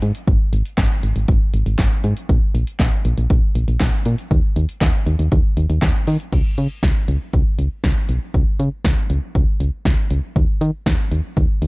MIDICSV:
0, 0, Header, 1, 3, 480
1, 0, Start_track
1, 0, Tempo, 504202
1, 263, Time_signature, 4, 2, 24, 8
1, 11111, End_track
2, 0, Start_track
2, 0, Title_t, "FM bass"
2, 0, Program_c, 0, 39
2, 23, Note_on_c, 0, 44, 105
2, 115, Note_off_c, 0, 44, 0
2, 263, Note_on_c, 0, 32, 100
2, 355, Note_off_c, 0, 32, 0
2, 503, Note_on_c, 0, 32, 101
2, 595, Note_off_c, 0, 32, 0
2, 741, Note_on_c, 0, 32, 109
2, 834, Note_off_c, 0, 32, 0
2, 984, Note_on_c, 0, 32, 95
2, 1076, Note_off_c, 0, 32, 0
2, 1103, Note_on_c, 0, 32, 94
2, 1195, Note_off_c, 0, 32, 0
2, 1223, Note_on_c, 0, 32, 103
2, 1315, Note_off_c, 0, 32, 0
2, 1464, Note_on_c, 0, 32, 97
2, 1556, Note_off_c, 0, 32, 0
2, 1582, Note_on_c, 0, 32, 100
2, 1675, Note_off_c, 0, 32, 0
2, 1701, Note_on_c, 0, 32, 106
2, 1794, Note_off_c, 0, 32, 0
2, 1942, Note_on_c, 0, 44, 108
2, 2035, Note_off_c, 0, 44, 0
2, 2183, Note_on_c, 0, 34, 114
2, 2275, Note_off_c, 0, 34, 0
2, 2423, Note_on_c, 0, 34, 104
2, 2515, Note_off_c, 0, 34, 0
2, 2662, Note_on_c, 0, 34, 106
2, 2755, Note_off_c, 0, 34, 0
2, 2904, Note_on_c, 0, 34, 105
2, 2996, Note_off_c, 0, 34, 0
2, 3024, Note_on_c, 0, 34, 103
2, 3116, Note_off_c, 0, 34, 0
2, 3144, Note_on_c, 0, 34, 103
2, 3236, Note_off_c, 0, 34, 0
2, 3383, Note_on_c, 0, 34, 96
2, 3475, Note_off_c, 0, 34, 0
2, 3502, Note_on_c, 0, 34, 96
2, 3595, Note_off_c, 0, 34, 0
2, 3622, Note_on_c, 0, 34, 112
2, 3714, Note_off_c, 0, 34, 0
2, 3863, Note_on_c, 0, 46, 102
2, 3955, Note_off_c, 0, 46, 0
2, 4103, Note_on_c, 0, 39, 106
2, 4195, Note_off_c, 0, 39, 0
2, 4343, Note_on_c, 0, 39, 102
2, 4436, Note_off_c, 0, 39, 0
2, 4581, Note_on_c, 0, 39, 110
2, 4674, Note_off_c, 0, 39, 0
2, 4821, Note_on_c, 0, 39, 107
2, 4914, Note_off_c, 0, 39, 0
2, 4942, Note_on_c, 0, 39, 100
2, 5035, Note_off_c, 0, 39, 0
2, 5064, Note_on_c, 0, 39, 109
2, 5156, Note_off_c, 0, 39, 0
2, 5303, Note_on_c, 0, 39, 101
2, 5395, Note_off_c, 0, 39, 0
2, 5423, Note_on_c, 0, 39, 101
2, 5515, Note_off_c, 0, 39, 0
2, 5541, Note_on_c, 0, 39, 106
2, 5634, Note_off_c, 0, 39, 0
2, 5783, Note_on_c, 0, 51, 104
2, 5876, Note_off_c, 0, 51, 0
2, 6023, Note_on_c, 0, 37, 107
2, 6115, Note_off_c, 0, 37, 0
2, 6264, Note_on_c, 0, 49, 94
2, 6356, Note_off_c, 0, 49, 0
2, 6501, Note_on_c, 0, 37, 97
2, 6594, Note_off_c, 0, 37, 0
2, 6743, Note_on_c, 0, 37, 106
2, 6835, Note_off_c, 0, 37, 0
2, 6984, Note_on_c, 0, 37, 106
2, 7076, Note_off_c, 0, 37, 0
2, 7222, Note_on_c, 0, 37, 96
2, 7314, Note_off_c, 0, 37, 0
2, 7461, Note_on_c, 0, 37, 108
2, 7554, Note_off_c, 0, 37, 0
2, 7702, Note_on_c, 0, 35, 92
2, 7795, Note_off_c, 0, 35, 0
2, 7943, Note_on_c, 0, 37, 106
2, 8035, Note_off_c, 0, 37, 0
2, 8183, Note_on_c, 0, 49, 98
2, 8275, Note_off_c, 0, 49, 0
2, 8421, Note_on_c, 0, 37, 101
2, 8514, Note_off_c, 0, 37, 0
2, 8663, Note_on_c, 0, 37, 98
2, 8755, Note_off_c, 0, 37, 0
2, 8903, Note_on_c, 0, 37, 108
2, 8995, Note_off_c, 0, 37, 0
2, 9142, Note_on_c, 0, 37, 95
2, 9235, Note_off_c, 0, 37, 0
2, 9381, Note_on_c, 0, 37, 104
2, 9474, Note_off_c, 0, 37, 0
2, 9622, Note_on_c, 0, 37, 100
2, 9715, Note_off_c, 0, 37, 0
2, 9862, Note_on_c, 0, 39, 99
2, 9954, Note_off_c, 0, 39, 0
2, 10102, Note_on_c, 0, 51, 108
2, 10194, Note_off_c, 0, 51, 0
2, 10340, Note_on_c, 0, 39, 110
2, 10434, Note_off_c, 0, 39, 0
2, 10582, Note_on_c, 0, 39, 100
2, 10674, Note_off_c, 0, 39, 0
2, 10823, Note_on_c, 0, 39, 102
2, 10915, Note_off_c, 0, 39, 0
2, 11061, Note_on_c, 0, 39, 106
2, 11111, Note_off_c, 0, 39, 0
2, 11111, End_track
3, 0, Start_track
3, 0, Title_t, "Drums"
3, 20, Note_on_c, 9, 42, 79
3, 115, Note_off_c, 9, 42, 0
3, 142, Note_on_c, 9, 42, 63
3, 237, Note_off_c, 9, 42, 0
3, 263, Note_on_c, 9, 36, 116
3, 264, Note_on_c, 9, 42, 66
3, 358, Note_off_c, 9, 36, 0
3, 359, Note_off_c, 9, 42, 0
3, 503, Note_on_c, 9, 42, 74
3, 599, Note_off_c, 9, 42, 0
3, 623, Note_on_c, 9, 42, 57
3, 719, Note_off_c, 9, 42, 0
3, 741, Note_on_c, 9, 36, 116
3, 742, Note_on_c, 9, 42, 84
3, 743, Note_on_c, 9, 38, 123
3, 743, Note_on_c, 9, 39, 109
3, 836, Note_off_c, 9, 36, 0
3, 837, Note_off_c, 9, 42, 0
3, 838, Note_off_c, 9, 38, 0
3, 838, Note_off_c, 9, 39, 0
3, 982, Note_on_c, 9, 42, 71
3, 1077, Note_off_c, 9, 42, 0
3, 1102, Note_on_c, 9, 42, 50
3, 1197, Note_off_c, 9, 42, 0
3, 1222, Note_on_c, 9, 42, 88
3, 1224, Note_on_c, 9, 36, 118
3, 1317, Note_off_c, 9, 42, 0
3, 1319, Note_off_c, 9, 36, 0
3, 1462, Note_on_c, 9, 42, 73
3, 1558, Note_off_c, 9, 42, 0
3, 1582, Note_on_c, 9, 42, 57
3, 1677, Note_off_c, 9, 42, 0
3, 1701, Note_on_c, 9, 36, 118
3, 1702, Note_on_c, 9, 38, 120
3, 1702, Note_on_c, 9, 39, 97
3, 1702, Note_on_c, 9, 42, 67
3, 1796, Note_off_c, 9, 36, 0
3, 1797, Note_off_c, 9, 38, 0
3, 1797, Note_off_c, 9, 39, 0
3, 1798, Note_off_c, 9, 42, 0
3, 1940, Note_on_c, 9, 42, 77
3, 2036, Note_off_c, 9, 42, 0
3, 2063, Note_on_c, 9, 42, 61
3, 2158, Note_off_c, 9, 42, 0
3, 2183, Note_on_c, 9, 36, 113
3, 2184, Note_on_c, 9, 42, 69
3, 2278, Note_off_c, 9, 36, 0
3, 2280, Note_off_c, 9, 42, 0
3, 2425, Note_on_c, 9, 42, 77
3, 2520, Note_off_c, 9, 42, 0
3, 2544, Note_on_c, 9, 42, 58
3, 2640, Note_off_c, 9, 42, 0
3, 2661, Note_on_c, 9, 36, 114
3, 2662, Note_on_c, 9, 42, 84
3, 2663, Note_on_c, 9, 38, 125
3, 2663, Note_on_c, 9, 39, 106
3, 2757, Note_off_c, 9, 36, 0
3, 2757, Note_off_c, 9, 42, 0
3, 2759, Note_off_c, 9, 38, 0
3, 2759, Note_off_c, 9, 39, 0
3, 2903, Note_on_c, 9, 42, 67
3, 2998, Note_off_c, 9, 42, 0
3, 3023, Note_on_c, 9, 42, 50
3, 3118, Note_off_c, 9, 42, 0
3, 3143, Note_on_c, 9, 42, 86
3, 3144, Note_on_c, 9, 36, 117
3, 3238, Note_off_c, 9, 42, 0
3, 3239, Note_off_c, 9, 36, 0
3, 3383, Note_on_c, 9, 42, 74
3, 3478, Note_off_c, 9, 42, 0
3, 3503, Note_on_c, 9, 42, 55
3, 3598, Note_off_c, 9, 42, 0
3, 3622, Note_on_c, 9, 36, 114
3, 3622, Note_on_c, 9, 38, 120
3, 3622, Note_on_c, 9, 39, 97
3, 3623, Note_on_c, 9, 42, 70
3, 3717, Note_off_c, 9, 36, 0
3, 3717, Note_off_c, 9, 38, 0
3, 3717, Note_off_c, 9, 39, 0
3, 3718, Note_off_c, 9, 42, 0
3, 3860, Note_on_c, 9, 42, 77
3, 3955, Note_off_c, 9, 42, 0
3, 3983, Note_on_c, 9, 42, 62
3, 4078, Note_off_c, 9, 42, 0
3, 4103, Note_on_c, 9, 36, 111
3, 4103, Note_on_c, 9, 42, 66
3, 4198, Note_off_c, 9, 36, 0
3, 4198, Note_off_c, 9, 42, 0
3, 4343, Note_on_c, 9, 42, 73
3, 4438, Note_off_c, 9, 42, 0
3, 4464, Note_on_c, 9, 42, 57
3, 4559, Note_off_c, 9, 42, 0
3, 4581, Note_on_c, 9, 36, 113
3, 4582, Note_on_c, 9, 42, 83
3, 4583, Note_on_c, 9, 38, 122
3, 4583, Note_on_c, 9, 39, 112
3, 4676, Note_off_c, 9, 36, 0
3, 4677, Note_off_c, 9, 42, 0
3, 4678, Note_off_c, 9, 38, 0
3, 4678, Note_off_c, 9, 39, 0
3, 4823, Note_on_c, 9, 42, 71
3, 4918, Note_off_c, 9, 42, 0
3, 4942, Note_on_c, 9, 42, 50
3, 5038, Note_off_c, 9, 42, 0
3, 5062, Note_on_c, 9, 42, 86
3, 5064, Note_on_c, 9, 36, 117
3, 5157, Note_off_c, 9, 42, 0
3, 5159, Note_off_c, 9, 36, 0
3, 5303, Note_on_c, 9, 42, 70
3, 5398, Note_off_c, 9, 42, 0
3, 5423, Note_on_c, 9, 42, 56
3, 5518, Note_off_c, 9, 42, 0
3, 5541, Note_on_c, 9, 36, 112
3, 5543, Note_on_c, 9, 38, 117
3, 5543, Note_on_c, 9, 39, 96
3, 5543, Note_on_c, 9, 42, 69
3, 5637, Note_off_c, 9, 36, 0
3, 5638, Note_off_c, 9, 38, 0
3, 5638, Note_off_c, 9, 39, 0
3, 5639, Note_off_c, 9, 42, 0
3, 5780, Note_on_c, 9, 46, 77
3, 5875, Note_off_c, 9, 46, 0
3, 5901, Note_on_c, 9, 42, 62
3, 5997, Note_off_c, 9, 42, 0
3, 6022, Note_on_c, 9, 36, 106
3, 6022, Note_on_c, 9, 42, 64
3, 6022, Note_on_c, 9, 49, 86
3, 6117, Note_off_c, 9, 42, 0
3, 6117, Note_off_c, 9, 49, 0
3, 6118, Note_off_c, 9, 36, 0
3, 6263, Note_on_c, 9, 42, 70
3, 6358, Note_off_c, 9, 42, 0
3, 6501, Note_on_c, 9, 36, 112
3, 6501, Note_on_c, 9, 42, 77
3, 6502, Note_on_c, 9, 38, 118
3, 6596, Note_off_c, 9, 36, 0
3, 6596, Note_off_c, 9, 42, 0
3, 6597, Note_off_c, 9, 38, 0
3, 6742, Note_on_c, 9, 42, 66
3, 6837, Note_off_c, 9, 42, 0
3, 6981, Note_on_c, 9, 42, 83
3, 6984, Note_on_c, 9, 36, 112
3, 7077, Note_off_c, 9, 42, 0
3, 7079, Note_off_c, 9, 36, 0
3, 7222, Note_on_c, 9, 42, 70
3, 7318, Note_off_c, 9, 42, 0
3, 7461, Note_on_c, 9, 36, 114
3, 7461, Note_on_c, 9, 38, 112
3, 7462, Note_on_c, 9, 42, 68
3, 7556, Note_off_c, 9, 36, 0
3, 7556, Note_off_c, 9, 38, 0
3, 7557, Note_off_c, 9, 42, 0
3, 7700, Note_on_c, 9, 42, 72
3, 7795, Note_off_c, 9, 42, 0
3, 7943, Note_on_c, 9, 36, 106
3, 7943, Note_on_c, 9, 42, 62
3, 8038, Note_off_c, 9, 36, 0
3, 8038, Note_off_c, 9, 42, 0
3, 8183, Note_on_c, 9, 42, 70
3, 8279, Note_off_c, 9, 42, 0
3, 8421, Note_on_c, 9, 36, 111
3, 8422, Note_on_c, 9, 42, 78
3, 8423, Note_on_c, 9, 38, 120
3, 8516, Note_off_c, 9, 36, 0
3, 8517, Note_off_c, 9, 42, 0
3, 8518, Note_off_c, 9, 38, 0
3, 8661, Note_on_c, 9, 42, 66
3, 8756, Note_off_c, 9, 42, 0
3, 8901, Note_on_c, 9, 42, 81
3, 8903, Note_on_c, 9, 36, 112
3, 8996, Note_off_c, 9, 42, 0
3, 8998, Note_off_c, 9, 36, 0
3, 9142, Note_on_c, 9, 42, 70
3, 9237, Note_off_c, 9, 42, 0
3, 9381, Note_on_c, 9, 36, 109
3, 9382, Note_on_c, 9, 38, 111
3, 9383, Note_on_c, 9, 42, 66
3, 9476, Note_off_c, 9, 36, 0
3, 9477, Note_off_c, 9, 38, 0
3, 9478, Note_off_c, 9, 42, 0
3, 9620, Note_on_c, 9, 42, 72
3, 9715, Note_off_c, 9, 42, 0
3, 9862, Note_on_c, 9, 36, 105
3, 9863, Note_on_c, 9, 42, 64
3, 9957, Note_off_c, 9, 36, 0
3, 9958, Note_off_c, 9, 42, 0
3, 10104, Note_on_c, 9, 42, 72
3, 10199, Note_off_c, 9, 42, 0
3, 10341, Note_on_c, 9, 36, 109
3, 10342, Note_on_c, 9, 42, 75
3, 10343, Note_on_c, 9, 38, 114
3, 10436, Note_off_c, 9, 36, 0
3, 10437, Note_off_c, 9, 42, 0
3, 10438, Note_off_c, 9, 38, 0
3, 10582, Note_on_c, 9, 42, 68
3, 10677, Note_off_c, 9, 42, 0
3, 10822, Note_on_c, 9, 42, 83
3, 10823, Note_on_c, 9, 36, 111
3, 10917, Note_off_c, 9, 42, 0
3, 10918, Note_off_c, 9, 36, 0
3, 11063, Note_on_c, 9, 42, 68
3, 11111, Note_off_c, 9, 42, 0
3, 11111, End_track
0, 0, End_of_file